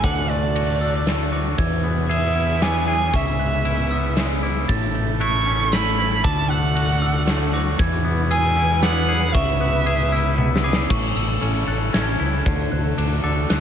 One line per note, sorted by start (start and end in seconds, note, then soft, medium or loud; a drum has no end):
0.00 1.56 D2 medium
0.00 1.33 D3 medium
0.00 1.56 A3 medium
0.00 1.56 A4 medium
0.00 0.29 D6 medium
0.00 kick medium
0.00 ride medium
0.04 1.57 D3 medium
0.04 1.57 F#4 medium
0.04 0.31 F#5 medium
0.30 1.05 A3 medium
0.30 1.33 D5 medium
0.30 0.81 F#6 medium
0.56 1.31 F#4 medium
0.56 ride soft
0.81 1.59 D4 soft
0.81 1.33 E6 medium
1.06 1.58 A3 medium
1.06 snare medium
1.06 ride medium
1.32 1.58 F#4 medium
1.32 1.59 D6 medium
1.58 3.11 E2 medium
1.58 3.13 E3 medium
1.58 3.12 E3 medium
1.58 3.12 B3 medium
1.58 3.12 F#4 medium
1.58 4.66 G#4 medium
1.58 2.10 G#6 medium
1.58 kick medium
1.58 ride medium
1.84 2.61 B3 medium
2.09 2.86 G#4 medium
2.09 2.64 E5 medium
2.09 2.62 E6 medium
2.09 ride medium
2.36 3.65 E4 medium
2.62 3.14 B3 medium
2.62 2.87 G#5 medium
2.62 3.14 D6 medium
2.62 snare medium
2.62 ride soft
2.88 3.14 G#4 medium
2.88 3.17 G#5 medium
3.13 4.66 C#2 medium
3.13 4.43 C#3 medium
3.13 6.21 C#3 medium
3.13 4.67 B3 medium
3.13 6.21 E4 medium
3.13 4.18 E5 medium
3.13 3.39 C#6 medium
3.13 kick medium
3.13 ride medium
3.39 4.16 G#3 medium
3.39 3.91 F#6 medium
3.65 4.42 E4 medium
3.65 ride soft
3.91 4.69 B3 medium
3.91 4.43 E6 medium
4.17 4.69 G#3 medium
4.17 snare medium
4.17 ride soft
4.43 4.69 E4 medium
4.43 4.69 D6 medium
4.68 6.21 A1 medium
4.68 5.98 A2 medium
4.68 6.23 A3 medium
4.68 7.77 A4 medium
4.68 5.20 A6 medium
4.68 kick medium
4.68 ride medium
4.94 5.71 A3 medium
5.20 5.97 E4 medium
5.20 5.74 C#6 medium
5.20 5.72 F#6 medium
5.20 ride soft
5.46 6.24 C#4 medium
5.72 6.24 A3 medium
5.72 6.25 B5 medium
5.72 6.24 E6 medium
5.72 snare medium
5.72 ride medium
5.98 6.24 E4 medium
6.23 7.76 D2 medium
6.23 7.77 D3 medium
6.23 7.53 D3 medium
6.23 7.78 A3 medium
6.23 9.31 F#4 medium
6.23 6.51 A5 medium
6.23 6.50 D6 medium
6.23 kick medium
6.23 ride medium
6.49 7.26 A3 medium
6.49 7.53 F#5 medium
6.49 7.02 F#6 medium
6.76 7.52 F#4 medium
6.76 ride soft
7.02 7.79 D4 medium
7.02 7.54 E6 medium
7.27 7.79 A3 medium
7.27 snare medium
7.27 ride medium
7.53 7.79 F#4 medium
7.53 7.80 D6 medium
7.79 9.32 E2 medium
7.79 9.34 E3 medium
7.79 10.88 G#3 medium
7.79 10.88 B4 medium
7.79 8.31 G#6 medium
7.79 kick loud
7.79 ride medium
8.05 8.81 B3 medium
8.31 9.07 G#4 medium
8.31 8.85 G#5 medium
8.31 8.83 E6 medium
8.31 ride medium
8.57 10.12 E4 medium
8.83 9.35 B3 medium
8.83 9.36 F#5 medium
8.83 9.35 D6 medium
8.83 snare medium
8.83 ride soft
9.08 9.35 G#4 medium
9.34 10.87 C#2 medium
9.34 10.64 C#3 medium
9.34 10.89 C#3 medium
9.34 10.89 E4 medium
9.34 10.38 E5 medium
9.34 9.61 C#6 medium
9.34 kick loud
9.34 ride medium
9.60 10.36 B3 medium
9.60 10.13 F#6 medium
9.86 10.63 G#4 medium
9.86 ride soft
10.12 10.90 E4 medium
10.12 10.64 E6 medium
10.38 10.90 B3 medium
10.38 high tom soft
10.56 snare medium
10.64 10.90 G#4 medium
10.64 10.90 D6 medium
10.73 snare medium
10.90 11.11 A1 medium
10.90 12.20 A2 medium
10.90 12.45 C#3 medium
10.90 12.45 A3 medium
10.90 12.45 E4 medium
10.90 13.60 A4 medium
10.90 11.16 C#6 medium
10.90 kick loud
10.90 crash medium
11.15 11.37 A1 medium
11.15 11.68 E6 medium
11.15 ride medium
11.41 11.63 A1 medium
11.41 11.92 C#4 medium
11.41 ride medium
11.67 11.89 A1 medium
11.67 12.46 A4 medium
11.67 11.94 F#6 medium
11.93 12.15 A1 medium
11.93 12.46 C#4 medium
11.93 12.46 G#6 medium
11.93 snare medium
11.93 ride medium
12.20 12.41 C#2 medium
12.20 12.46 E4 medium
12.46 12.67 D2 medium
12.46 13.60 D3 medium
12.46 13.60 A3 medium
12.46 13.60 F#4 medium
12.46 kick medium
12.46 ride medium
12.72 12.93 D2 medium
12.72 13.24 F#6 medium
12.98 13.19 D2 medium
12.98 13.49 D4 medium
12.98 ride medium
13.24 13.45 D2 medium
13.24 13.60 A4 medium
13.24 13.50 D6 medium
13.50 13.60 D2 medium
13.50 13.60 D4 medium
13.50 13.60 F#6 medium
13.50 snare medium
13.50 ride medium